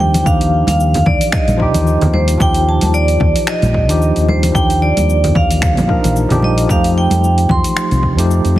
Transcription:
Already playing: fingered electric bass D#2, tine electric piano F3 D4 D#4 F4 G4
0.00 vibraphone G5, high conga
0.14 open hi-hat, low conga, cabasa
0.23 fingered electric bass D#2, tine electric piano F3 D4 D#4, vibraphone F5, kick, cabasa
0.28 tine electric piano G4
0.41 open hi-hat, cabasa
0.67 fingered electric bass D#2, vibraphone F5, open hi-hat, high conga, cabasa
0.80 cabasa
0.94 open hi-hat, low conga, cabasa
1.06 fingered electric bass D#2, vibraphone D5, kick, low conga
1.21 open hi-hat, cabasa
1.32 vibraphone D#5, finger snap, kick, cabasa
1.47 fingered electric bass A#1, open hi-hat, high conga, cabasa
1.57 tine electric piano F3 D#4 F4, kick
1.62 tine electric piano G4
1.74 fingered electric bass D#2, open hi-hat, low conga, cabasa
1.87 cabasa
2.01 fingered electric bass D#2, open hi-hat, low conga, cabasa
2.13 vibraphone C5, high conga
2.28 open hi-hat, cabasa
2.38 fingered electric bass D#2, tine electric piano F3 D#4 F4, vibraphone G5, kick, cabasa
2.42 tine electric piano G4
2.54 open hi-hat, cabasa
2.69 vibraphone A5
2.81 fingered electric bass D#2, open hi-hat, high conga, cabasa
2.94 vibraphone D5, cabasa
3.08 open hi-hat, cabasa
3.20 fingered electric bass D#2, kick, low conga
3.36 open hi-hat, cabasa
3.47 vibraphone D#5, finger snap, cabasa
3.62 fingered electric bass A#1, open hi-hat, high conga, cabasa
3.74 kick
3.88 fingered electric bass D#2, tine electric piano F3 D4 D#4 G4, open hi-hat, cabasa
4.02 cabasa
4.16 fingered electric bass D#2, open hi-hat, cabasa
4.28 vibraphone C5, high conga
4.43 open hi-hat, low conga, cabasa
4.52 fingered electric bass D#2, tine electric piano F3 D4 D#4, vibraphone G5, kick, cabasa
4.57 tine electric piano G4
4.70 open hi-hat, cabasa
4.82 vibraphone D5
4.97 fingered electric bass D#2, open hi-hat, high conga, cabasa
5.10 cabasa
5.24 open hi-hat, low conga, cabasa
5.35 fingered electric bass D#2, vibraphone F5, kick, low conga
5.51 open hi-hat, cabasa
5.62 finger snap, kick, cabasa
5.77 fingered electric bass A#1, open hi-hat, high conga, low conga, cabasa
5.88 tine electric piano F3 D4 D#4 A#4, kick
6.04 fingered electric bass A#1, open hi-hat, low conga, cabasa
6.16 cabasa
6.29 fingered electric bass A#1, tine electric piano F3 D4 D#4 G4, open hi-hat, low conga, cabasa
6.42 vibraphone D#5, high conga
6.58 open hi-hat, cabasa
6.67 fingered electric bass F2, tine electric piano F3 A3 D#4, vibraphone F5, kick, cabasa
6.72 tine electric piano G4
6.84 open hi-hat, cabasa
6.98 vibraphone G5
7.10 fingered electric bass F2, open hi-hat, high conga, cabasa
7.24 cabasa
7.38 open hi-hat, cabasa
7.49 fingered electric bass F2, vibraphone C6, kick, low conga
7.64 open hi-hat, cabasa
7.77 finger snap, cabasa
7.91 fingered electric bass C2, open hi-hat, high conga, cabasa
8.03 kick
8.17 fingered electric bass F2, tine electric piano F3 A3 D#4 G4, open hi-hat, cabasa
8.31 cabasa
8.44 fingered electric bass F2, open hi-hat, cabasa
8.56 high conga

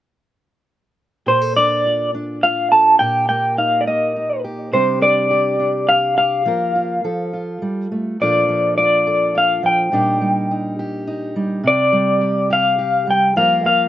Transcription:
1.26 steel-string acoustic guitar A#2 G4, clean electric guitar C5
1.42 steel-string acoustic guitar A4
1.57 steel-string acoustic guitar D4, clean electric guitar D5
1.86 steel-string acoustic guitar F4
2.15 steel-string acoustic guitar D4
2.43 steel-string acoustic guitar F4, clean electric guitar F5
2.72 steel-string acoustic guitar A4, clean electric guitar A5
2.99 steel-string acoustic guitar A#2 G4, clean electric guitar G5
3.29 steel-string acoustic guitar A#3, clean electric guitar G5
3.58 steel-string acoustic guitar D#4, clean electric guitar F5
3.81 clean electric guitar D5
3.87 steel-string acoustic guitar A#3, clean electric guitar D#5
4.16 steel-string acoustic guitar D#4
4.44 steel-string acoustic guitar G4
4.72 steel-string acoustic guitar C3 G3 D4 G4, clean electric guitar C5
5.01 steel-string acoustic guitar D4, clean electric guitar D5
5.31 steel-string acoustic guitar G4
5.59 steel-string acoustic guitar D4
5.89 steel-string acoustic guitar G4, clean electric guitar F5
6.17 steel-string acoustic guitar G4, clean electric guitar F5
6.45 steel-string acoustic guitar F3 A#3 F4 A#4
6.75 steel-string acoustic guitar F4
7.04 steel-string acoustic guitar F3 A4
7.33 steel-string acoustic guitar F4
7.62 steel-string acoustic guitar G3
7.92 steel-string acoustic guitar A3
8.20 steel-string acoustic guitar A#2 F3 D4 F4 A4, clean electric guitar D5
8.49 steel-string acoustic guitar F3
8.78 steel-string acoustic guitar F4, clean electric guitar D5
9.07 steel-string acoustic guitar A4
9.35 steel-string acoustic guitar F4, clean electric guitar F5
9.63 steel-string acoustic guitar F3, clean electric guitar G5
9.92 steel-string acoustic guitar A#2 G3 D4 D#4 G4
10.21 steel-string acoustic guitar G3
10.51 steel-string acoustic guitar D#4
10.79 steel-string acoustic guitar G4
11.07 steel-string acoustic guitar D#4
11.36 steel-string acoustic guitar G3
11.63 steel-string acoustic guitar C3
11.68 clean electric guitar D5
11.92 steel-string acoustic guitar G3
12.21 steel-string acoustic guitar G4
12.50 steel-string acoustic guitar G4, clean electric guitar F5
12.78 steel-string acoustic guitar G4
13.07 steel-string acoustic guitar G3, clean electric guitar G5
13.36 steel-string acoustic guitar F3 A#3 F4 A#4, clean electric guitar F5
13.64 steel-string acoustic guitar A#3, clean electric guitar F5

